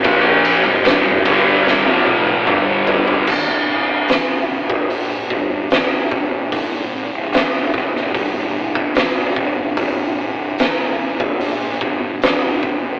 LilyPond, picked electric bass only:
\new Staff \with { instrumentName = "Picked electric bass" } { \clef bass \time 4/4 \key g \phrygian \tempo 4 = 74 bes,,8. c,,16 g,,16 c,,16 g,,8. f,,8. g,,4 | c,,4.~ c,,16 bes,,8. g,,8 c,,8 bes,,8 | aes,,8. c,,16 bes,,16 c,,16 d,,16 c,,16 c,,16 c,,8 g,,8 c,,16 c,,8 | c,,4.~ c,,16 bes,,8. g,,8 c,,8 bes,,8 | }